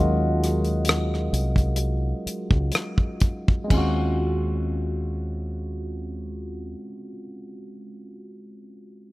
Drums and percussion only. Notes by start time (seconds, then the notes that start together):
0.44 cross-stick, closed hi-hat
0.65 closed hi-hat
0.85 closed hi-hat
0.89 cross-stick
1.14 cross-stick
1.34 closed hi-hat
1.56 kick, closed hi-hat
1.76 closed hi-hat
2.27 closed hi-hat
2.51 kick
2.72 cross-stick, closed hi-hat
2.98 kick
3.20 kick, closed hi-hat
3.48 kick
3.70 kick, crash